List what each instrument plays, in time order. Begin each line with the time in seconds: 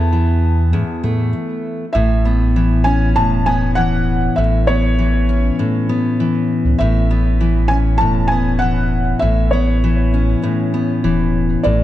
Already playing: steel-string acoustic guitar E2 B3 E4, sub bass E2, felt piano A5
0.12 steel-string acoustic guitar E3
0.73 steel-string acoustic guitar E2, sub bass A2
1.03 sub bass A2, steel-string acoustic guitar A3
1.93 sub bass A1, steel-string acoustic guitar A2, felt piano E5
2.25 steel-string acoustic guitar B3
2.56 steel-string acoustic guitar E3
2.84 steel-string acoustic guitar C#4, felt piano G#5
3.16 sub bass E1, steel-string acoustic guitar A2, felt piano A5
3.46 steel-string acoustic guitar B3, felt piano G#5
3.75 steel-string acoustic guitar E3, felt piano F#5
4.36 sub bass A1, steel-string acoustic guitar A2, felt piano E5
4.67 steel-string acoustic guitar B3, felt piano C#5
4.99 steel-string acoustic guitar E3
5.29 steel-string acoustic guitar C#4
5.59 steel-string acoustic guitar A2
5.89 steel-string acoustic guitar B3
6.20 steel-string acoustic guitar E3
6.65 sub bass C#2
6.79 sub bass A1, steel-string acoustic guitar A2, felt piano E5
7.11 steel-string acoustic guitar B3
7.41 steel-string acoustic guitar E3
7.68 steel-string acoustic guitar C#4, felt piano G#5
7.98 sub bass E1, steel-string acoustic guitar A2, felt piano A5
8.28 felt piano G#5
8.32 steel-string acoustic guitar B3
8.59 steel-string acoustic guitar E3, felt piano F#5
9.19 sub bass A1, steel-string acoustic guitar A2, felt piano E5
9.51 steel-string acoustic guitar B3, felt piano C#5
9.84 steel-string acoustic guitar E3
10.14 steel-string acoustic guitar C#4
10.43 steel-string acoustic guitar A2
10.74 steel-string acoustic guitar B3
11.04 sub bass E1, steel-string acoustic guitar E3
11.63 sub bass A1, steel-string acoustic guitar A2, felt piano D5